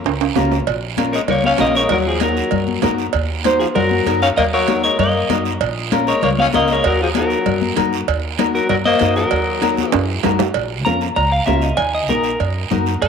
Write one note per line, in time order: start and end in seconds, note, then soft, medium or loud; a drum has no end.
0.00 0.35 A#4 medium
0.04 0.30 C#2 medium
0.04 high timbale loud
0.04 long guiro medium
0.21 high timbale medium
0.36 0.61 C#2 medium
0.36 0.57 C#4 medium
0.36 0.58 F4 medium
0.36 0.58 A#4 medium
0.36 high conga medium
0.36 low timbale medium
0.36 short guiro medium
0.51 low timbale medium
0.51 short guiro medium
0.67 1.17 A#1 medium
0.67 cowbell loud
0.67 long guiro medium
0.97 1.19 C#4 medium
0.97 1.19 F4 medium
0.97 1.20 A#4 medium
0.97 cowbell medium
0.97 high conga medium
0.97 short guiro medium
1.12 1.22 G#3 medium
1.12 1.18 A#4 medium
1.12 1.17 C#5 medium
1.12 short guiro medium
1.28 1.53 C#2 medium
1.28 1.44 A#3 medium
1.28 1.43 A#4 medium
1.28 1.44 C#5 medium
1.28 cowbell medium
1.28 low conga medium
1.28 long guiro medium
1.44 1.63 C#4 medium
1.44 1.50 C#5 medium
1.44 1.51 F5 loud
1.44 high conga medium
1.58 1.84 A#1 medium
1.58 1.81 C#4 medium
1.58 1.81 F4 medium
1.58 1.81 A#4 medium
1.58 1.74 A#4 medium
1.58 1.76 D#5 loud
1.58 cowbell medium
1.58 high conga medium
1.58 low timbale medium
1.58 short guiro medium
1.63 1.77 A#3 medium
1.75 1.91 G#3 medium
1.75 1.89 A#4 medium
1.75 1.92 C#5 medium
1.75 short guiro medium
1.89 2.40 D#2 medium
1.89 1.95 F#4 medium
1.89 1.97 A#4 medium
1.89 cowbell loud
1.89 low conga medium
1.89 long guiro medium
1.93 2.09 F#3 medium
2.06 2.23 F3 medium
2.06 2.21 F4 medium
2.06 2.22 G#4 medium
2.20 2.43 D#4 medium
2.20 2.79 F#4 medium
2.20 2.43 F#4 medium
2.20 2.43 A#4 medium
2.20 2.80 A#4 medium
2.20 cowbell medium
2.20 high conga medium
2.20 short guiro medium
2.25 2.81 F#3 medium
2.37 short guiro medium
2.51 2.77 F#2 medium
2.51 cowbell medium
2.51 low conga medium
2.51 long guiro medium
2.68 high conga medium
2.82 3.08 F#2 medium
2.82 3.05 D#4 medium
2.82 3.05 F#4 medium
2.82 3.05 A#4 medium
2.82 cowbell medium
2.82 high conga medium
2.82 low timbale medium
2.82 short guiro medium
2.98 short guiro medium
3.13 3.63 D#2 medium
3.13 cowbell loud
3.13 long guiro medium
3.44 3.67 D#4 medium
3.44 3.67 F#4 medium
3.44 3.67 C5 medium
3.44 cowbell medium
3.44 high conga medium
3.44 short guiro medium
3.60 3.67 F3 medium
3.60 3.66 F4 medium
3.60 3.65 G#4 medium
3.60 short guiro medium
3.75 4.01 F#2 medium
3.75 4.19 F#3 medium
3.75 4.19 F#4 medium
3.75 4.23 A#4 medium
3.75 cowbell medium
3.75 low conga medium
3.75 long guiro medium
3.91 high conga medium
4.06 4.31 F#2 medium
4.06 4.28 D#4 medium
4.06 4.28 F#4 medium
4.06 4.28 A#4 medium
4.06 cowbell medium
4.06 high conga medium
4.06 short guiro medium
4.22 4.29 C#4 medium
4.22 4.29 C#5 medium
4.22 4.28 F5 loud
4.22 short guiro medium
4.36 4.87 D#2 medium
4.36 4.46 A#3 medium
4.36 4.43 A#4 medium
4.36 4.42 D#5 loud
4.36 cowbell loud
4.36 low conga medium
4.36 long guiro medium
4.53 4.82 F#3 medium
4.53 4.82 A#4 medium
4.53 4.82 C#5 medium
4.68 4.90 D#4 medium
4.68 4.90 F#4 medium
4.68 4.90 A#4 medium
4.68 cowbell medium
4.68 high conga medium
4.68 short guiro medium
4.83 4.98 G#3 medium
4.83 4.98 A#4 medium
4.83 4.98 C#5 medium
4.83 short guiro medium
4.99 5.24 F#2 medium
4.99 5.43 A#3 medium
4.99 5.42 A#4 medium
4.99 5.43 D#5 medium
4.99 cowbell medium
4.99 low conga medium
4.99 long guiro medium
5.29 5.55 F#2 medium
5.29 5.51 D#4 medium
5.29 5.52 F#4 medium
5.29 5.52 A#4 medium
5.29 cowbell medium
5.29 high conga medium
5.29 low conga medium
5.29 short guiro medium
5.45 short guiro medium
5.61 6.10 A#1 medium
5.61 cowbell loud
5.61 long guiro medium
5.91 6.13 C#4 medium
5.91 6.13 F4 medium
5.91 6.14 A#4 medium
5.91 cowbell medium
5.91 high conga medium
5.91 short guiro medium
6.07 6.22 G#3 medium
6.07 6.22 A#4 medium
6.07 6.22 C#5 medium
6.07 short guiro medium
6.22 6.48 C#2 medium
6.22 6.31 A#3 medium
6.22 6.29 A#4 medium
6.22 6.29 C#5 loud
6.22 cowbell medium
6.22 low conga medium
6.22 long guiro medium
6.38 6.47 C#4 medium
6.38 6.44 C#5 medium
6.38 6.45 F5 loud
6.38 high conga medium
6.52 6.79 C#2 medium
6.52 6.75 C#4 medium
6.52 6.75 F4 medium
6.52 6.75 A#4 medium
6.52 6.69 A#4 medium
6.52 6.73 D#5 loud
6.52 cowbell medium
6.52 high conga medium
6.52 short guiro medium
6.57 6.72 A#3 medium
6.68 6.86 G#3 medium
6.68 short guiro medium
6.72 6.85 A#4 medium
6.72 6.86 C#5 medium
6.83 7.34 D#2 medium
6.83 6.99 F#4 medium
6.83 7.00 A#4 loud
6.83 cowbell loud
6.83 long guiro medium
6.88 7.01 F#3 medium
7.02 7.09 F3 medium
7.02 7.07 F4 medium
7.02 7.08 G#4 medium
7.15 7.37 D#4 medium
7.15 7.37 F#4 medium
7.15 7.74 F#4 medium
7.15 7.38 A#4 medium
7.15 7.75 A#4 medium
7.15 cowbell medium
7.15 high conga medium
7.15 short guiro medium
7.19 7.75 F#3 medium
7.30 short guiro medium
7.46 7.71 F#2 medium
7.46 cowbell medium
7.46 low conga medium
7.46 long guiro medium
7.62 high conga medium
7.76 8.02 F#2 medium
7.76 7.98 D#4 medium
7.76 7.98 F#4 medium
7.76 7.99 A#4 loud
7.76 cowbell medium
7.76 high conga medium
7.76 low conga medium
7.76 short guiro medium
7.93 short guiro medium
8.08 8.57 D#2 medium
8.08 cowbell loud
8.08 long guiro medium
8.39 8.60 D#4 medium
8.39 8.61 F#4 medium
8.39 8.61 A#4 medium
8.39 cowbell medium
8.39 high conga medium
8.39 short guiro medium
8.55 8.69 F#3 medium
8.55 8.69 F#4 medium
8.55 8.68 A#4 medium
8.55 short guiro medium
8.69 8.94 F#2 medium
8.69 8.77 F#3 medium
8.69 8.76 F#4 medium
8.69 8.75 A#4 medium
8.69 cowbell medium
8.69 low conga medium
8.69 long guiro medium
8.85 9.15 A#3 medium
8.85 9.14 C5 medium
8.85 9.14 D#5 loud
8.85 high conga medium
8.99 9.26 F#2 medium
8.99 9.22 D#4 medium
8.99 9.22 F#4 medium
8.99 9.23 A#4 medium
8.99 cowbell medium
8.99 high conga medium
8.99 short guiro medium
9.16 9.89 F#3 medium
9.16 10.21 F#4 medium
9.16 9.88 A#4 medium
9.16 short guiro medium
9.31 9.81 D#2 medium
9.31 cowbell loud
9.31 long guiro medium
9.61 9.83 D#4 medium
9.61 9.84 F#4 medium
9.61 9.84 A#4 medium
9.61 cowbell medium
9.61 high conga medium
9.61 short guiro medium
9.77 high conga medium
9.77 short guiro medium
9.88 10.21 E3 medium
9.88 10.20 G#4 medium
9.88 cowbell medium
9.88 high timbale medium
9.94 10.18 F#2 medium
9.94 high conga medium
9.94 long guiro medium
10.23 10.49 F#2 medium
10.23 10.46 D#4 medium
10.23 10.46 F#4 medium
10.23 10.46 A#4 medium
10.23 cowbell medium
10.23 low conga medium
10.23 low timbale medium
10.23 short guiro medium
10.39 low conga medium
10.39 low timbale loud
10.39 short guiro medium
10.54 10.86 A#1 medium
10.54 cowbell loud
10.54 high conga soft
10.54 long guiro medium
10.85 11.11 F2 medium
10.85 11.08 C#4 medium
10.85 11.08 F4 medium
10.85 11.08 A#4 medium
10.85 11.00 A#5 medium
10.85 high conga medium
10.85 short guiro medium
11.01 short guiro medium
11.16 11.41 C#2 medium
11.16 11.32 A#5 medium
11.16 cowbell medium
11.16 high conga soft
11.16 long guiro medium
11.32 11.46 F5 medium
11.46 11.72 C#2 medium
11.46 11.69 C#4 medium
11.46 11.69 F4 medium
11.46 11.69 A#4 medium
11.46 11.62 E5 medium
11.46 high conga medium
11.46 low timbale medium
11.46 short guiro medium
11.62 11.78 D#5 medium
11.62 short guiro medium
11.77 12.09 D#2 medium
11.77 11.93 G#5 medium
11.77 cowbell loud
11.77 high conga soft
11.77 long guiro medium
11.95 12.09 D#5 medium
12.07 12.34 A#1 medium
12.07 12.31 D#4 medium
12.07 12.31 F#4 medium
12.07 12.39 A#4 loud
12.07 12.31 A#4 medium
12.07 high conga medium
12.07 short guiro medium
12.24 short guiro medium
12.40 12.65 F#2 medium
12.40 cowbell medium
12.40 high conga soft
12.40 long guiro medium
12.70 12.96 F#2 loud
12.70 12.93 D#4 medium
12.70 12.93 F#4 medium
12.70 12.93 A#4 medium
12.70 high conga medium
12.70 low conga medium
12.70 short guiro medium
12.86 short guiro medium
13.02 13.08 F#2 medium
13.02 13.08 A#4 loud
13.02 cowbell loud
13.02 high conga soft
13.02 long guiro medium